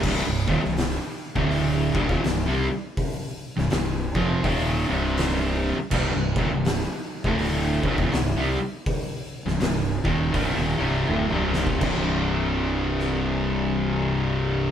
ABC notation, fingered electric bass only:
X:1
M:4/4
L:1/16
Q:"Swing" 1/4=82
K:Cm
V:1 name="Fingered electric bass" clef=bass
C,,, C,,, E,,, C,,,2 z2 D,,,3 C,,, E,,, C,,, C,, z2 | z3 C,,, C,,,2 F,,,2 E,,,2 C,,,4- C,,, z | C,,, C,,, E,,, C,,,2 z2 D,,,3 C,,, E,,, C,,, C,, z2 | z3 C,,, C,,,2 E,,,2 C,,, E,,, C,,,2 D,,, C,,,3 |
C,,,16 |]